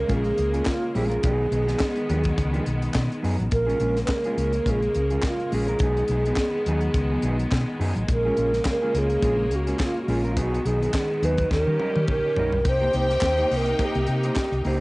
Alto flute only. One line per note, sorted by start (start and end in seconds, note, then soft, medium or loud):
0.00 0.15 A#4 loud
0.13 0.69 G#4 loud
0.67 0.97 F4 medium
0.96 2.67 G#4 medium
3.53 4.00 A#4 loud
4.05 4.12 B4 medium
4.11 4.72 A#4 loud
4.70 5.25 G#4 loud
5.28 5.56 F4 medium
5.55 7.24 G#4 medium
8.13 8.64 A#4 loud
8.70 9.00 A#4 medium
8.98 9.57 G#4 loud
9.55 9.82 F#4 medium
9.83 10.02 F4 medium
10.02 10.11 F#4 medium
10.09 10.39 F4 medium
10.38 10.68 F#4 loud
10.66 10.94 G#4 loud
10.95 11.26 G#4 medium
11.25 11.52 B4 loud
11.53 12.05 A#4 medium
12.11 12.71 A#4 loud
12.69 12.96 C5 loud
12.99 13.59 C5 loud
13.57 13.87 A#4 loud
13.85 14.11 G4 loud
14.12 14.63 G4 medium
14.69 14.80 G4 medium